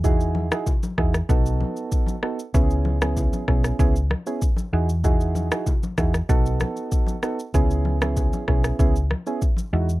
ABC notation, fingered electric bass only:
X:1
M:4/4
L:1/16
Q:1/4=96
K:C#m
V:1 name="Fingered electric bass" clef=bass
E,,4- E,, z E,,2 B,,,3 z4 z | C,,4- C,, z B,,,2 C,,3 z3 E,,2- | E,,4- E,, z E,,2 B,,,3 z4 z | C,,4- C,, z B,,,2 C,,3 z3 E,,2 |]